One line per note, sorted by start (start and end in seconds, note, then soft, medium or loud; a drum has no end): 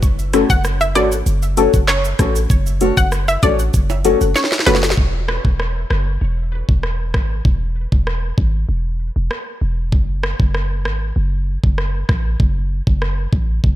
0.03 0.44 F#1 loud
0.03 kick loud
0.03 shaker medium
0.03 maracas medium
0.19 maracas medium
0.19 shaker medium
0.33 0.47 A3 medium
0.33 0.50 C#4 medium
0.33 0.47 C#4 medium
0.33 0.47 F#4 medium
0.33 0.50 F#4 loud
0.33 0.47 A4 medium
0.33 0.50 A4 medium
0.33 0.51 C#5 loud
0.33 cross-stick loud
0.33 closed hi-hat medium
0.33 shaker medium
0.33 maracas medium
0.50 0.97 F#1 medium
0.50 0.62 F#5 medium
0.50 kick medium
0.50 maracas medium
0.50 shaker medium
0.64 cross-stick medium
0.64 shaker medium
0.64 maracas medium
0.81 0.93 E5 medium
0.81 shaker medium
0.81 maracas medium
0.95 1.23 G#1 medium
0.95 1.09 A3 medium
0.95 1.12 C#4 medium
0.95 1.09 C#4 medium
0.95 1.09 F#4 medium
0.95 1.12 F#4 medium
0.95 1.09 A4 medium
0.95 1.12 A4 loud
0.95 1.12 C#5 loud
0.95 1.09 D5 medium
0.95 cross-stick medium
0.95 closed hi-hat medium
0.95 shaker medium
0.95 maracas soft
1.12 maracas medium
1.12 shaker medium
1.26 1.68 F#1 loud
1.26 maracas medium
1.26 shaker medium
1.42 maracas medium
1.42 shaker medium
1.57 1.70 A3 medium
1.57 1.74 C#4 loud
1.57 1.70 C#4 medium
1.57 1.70 F#4 medium
1.57 1.73 F#4 loud
1.57 1.70 A4 loud
1.57 1.73 A4 loud
1.57 1.72 C#5 loud
1.57 closed hi-hat medium
1.57 shaker medium
1.57 maracas medium
1.74 2.14 F#1 medium
1.74 muted nylon-string guitar stroke soft
1.74 kick medium
1.74 maracas medium
1.74 shaker medium
1.88 2.33 C#5 medium
1.88 cross-stick medium
1.88 clap medium
1.88 shaker medium
1.88 maracas medium
2.05 shaker medium
2.05 maracas medium
2.19 2.46 A1 medium
2.19 2.32 A3 medium
2.19 2.36 C#4 medium
2.19 2.32 C#4 medium
2.19 2.32 F#4 medium
2.19 2.36 F#4 medium
2.19 2.32 A4 medium
2.19 2.36 A4 loud
2.19 2.36 C#5 medium
2.19 kick medium
2.19 cross-stick medium
2.19 closed hi-hat medium
2.19 shaker medium
2.19 maracas medium
2.36 maracas medium
2.36 shaker medium
2.50 2.92 F#1 loud
2.50 kick loud
2.50 shaker medium
2.50 maracas medium
2.66 shaker medium
2.66 maracas medium
2.81 2.94 A3 medium
2.81 2.97 C#4 medium
2.81 2.94 C#4 medium
2.81 2.94 F#4 medium
2.81 2.98 F#4 medium
2.81 2.94 A4 medium
2.81 2.98 A4 medium
2.81 2.98 C#5 loud
2.81 closed hi-hat medium
2.81 shaker medium
2.81 maracas soft
2.97 3.37 F#1 loud
2.97 3.10 F#5 medium
2.97 kick loud
2.97 shaker medium
2.97 maracas medium
3.12 cross-stick medium
3.12 shaker medium
3.12 maracas medium
3.28 3.41 E5 medium
3.28 shaker medium
3.28 maracas medium
3.43 3.70 A1 loud
3.43 3.56 A3 medium
3.43 3.59 C#4 loud
3.43 3.56 C#4 medium
3.43 3.56 F#4 medium
3.43 3.59 F#4 loud
3.43 3.56 A4 medium
3.43 3.60 A4 medium
3.43 3.60 C#5 loud
3.43 3.57 D5 medium
3.43 kick medium
3.43 closed hi-hat medium
3.43 shaker medium
3.43 maracas medium
3.59 maracas medium
3.59 shaker medium
3.74 4.15 F#1 loud
3.74 kick medium
3.74 maracas medium
3.74 shaker medium
3.90 high timbale medium
3.90 maracas medium
3.90 shaker medium
4.04 4.18 A3 medium
4.04 4.21 C#4 loud
4.04 4.18 C#4 medium
4.04 4.18 F#4 medium
4.04 4.21 F#4 loud
4.04 4.18 A4 loud
4.04 4.20 A4 medium
4.04 4.20 C#5 loud
4.04 closed hi-hat medium
4.04 shaker medium
4.04 maracas medium
4.21 4.34 F#1 medium
4.21 muted nylon-string guitar stroke medium
4.21 shaker medium
4.21 maracas medium
4.36 4.50 C#5 medium
4.36 snare medium
4.36 shaker medium
4.36 maracas medium
4.44 snare medium
4.52 snare medium
4.52 shaker medium
4.52 maracas medium
4.59 snare medium
4.66 4.94 F#1 loud
4.66 4.80 A3 medium
4.66 4.83 C#4 medium
4.66 4.80 C#4 medium
4.66 4.80 F#4 medium
4.66 4.83 F#4 medium
4.66 4.80 A4 medium
4.66 4.82 A4 medium
4.66 4.80 B4 medium
4.66 4.82 C#5 loud
4.66 snare medium
4.66 closed hi-hat medium
4.66 high timbale medium
4.66 shaker medium
4.66 maracas medium
4.75 snare medium
4.83 muted nylon-string guitar stroke soft
4.83 snare loud
4.83 shaker medium
4.83 maracas medium
4.90 snare loud
4.97 5.39 E1 loud
4.97 kick loud
5.29 cross-stick loud
5.45 5.85 E1 medium
5.45 kick medium
5.60 cross-stick medium
5.90 6.18 F#1 medium
5.90 cross-stick medium
6.21 6.63 E1 medium
6.69 7.16 E1 medium
6.69 kick medium
6.83 cross-stick medium
7.14 7.41 G#1 loud
7.14 kick medium
7.14 cross-stick medium
7.45 7.87 E1 loud
7.45 kick loud
7.92 8.32 E1 loud
7.92 kick medium
8.07 cross-stick medium
8.38 8.65 G#1 loud
8.38 kick medium
8.69 9.10 E1 medium
9.16 9.29 E1 medium
9.31 cross-stick medium
9.61 9.94 E1 medium
9.92 10.34 F#1 loud
9.92 kick loud
10.23 cross-stick loud
10.40 10.87 F#1 medium
10.40 kick medium
10.55 cross-stick medium
10.85 11.12 G#1 medium
10.85 cross-stick medium
11.16 11.58 F#1 loud
11.64 12.03 F#1 medium
11.64 kick medium
11.78 cross-stick medium
12.09 12.36 A1 medium
12.09 kick medium
12.09 cross-stick medium
12.40 12.81 F#1 loud
12.40 kick loud
12.87 13.27 F#1 loud
12.87 kick medium
13.02 cross-stick medium
13.33 13.60 A1 medium
13.33 kick medium
13.64 13.76 F#1 loud
13.64 kick medium